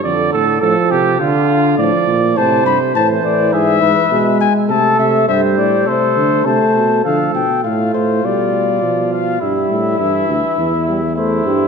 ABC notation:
X:1
M:4/4
L:1/8
Q:1/4=103
K:Dm
V:1 name="Trumpet"
z8 | a =b a d e3 ^g | a e e d c2 a2 | f g f c d3 f |
e6 c2 |]
V:2 name="Trumpet"
d A A G F2 d2 | c2 c2 ^G =B2 z | A2 c2 A2 c2 | A2 F6 |
E6 E2 |]
V:3 name="Euphonium" clef=bass
D,2 F,2 D,2 F,2 | C,2 E,4 ^G,2 | A,2 G,2 A,2 A,2 | F,2 A,2 G,2 F,2 |
G,2 E,2 E, G, A, G, |]
V:4 name="Bass trombone" clef=bass
F,, A,, A,, C, D,2 A,, B,, | A,, G,, A,, A,, ^G,, G,, =B,, z | C, C, G,, A,, C, D, C, =B,, | D, =B,, A,, A,, B,,2 B,,2 |
G,, A,, G,, D,, E,,3 G,, |]